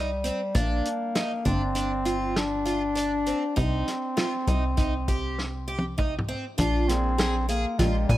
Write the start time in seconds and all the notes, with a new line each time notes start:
Already playing: C2 G3
0.24 C4, closed hi-hat
0.55 A#1 A#3 D4, kick, closed hi-hat
0.85 closed hi-hat
1.15 D#4, snare, closed hi-hat
1.45 G1 C4 D4, kick, closed hi-hat
1.75 D4, closed hi-hat
2.05 F4, closed hi-hat
2.36 D4, snare, closed hi-hat
2.66 F4, closed hi-hat
2.95 D4, closed hi-hat
3.26 C4, closed hi-hat
3.56 C2 C4 D#4, kick, closed hi-hat
3.88 snare, closed hi-hat
4.17 F4, snare, closed hi-hat
4.47 C2 D#4, closed hi-hat
4.77 D#4, kick, snare, closed hi-hat
5.08 G4, kick, closed hi-hat
5.39 snare
5.68 G4
5.79 high tom
5.98 D#4, kick, mid tom
6.19 mid tom
6.29 C4
6.58 A#1 D4 F4, kick, closed hi-hat
6.88 A#2 A#3 C4 D4 G#4, snare, closed hi-hat
7.18 G#4, snare, closed hi-hat
7.48 A#3 G#4, closed hi-hat
7.78 A#1 A#2 G#3 A#3 D4 F4 G4, kick, snare, closed hi-hat
8.08 A#2 G3 G#5, kick, closed hi-hat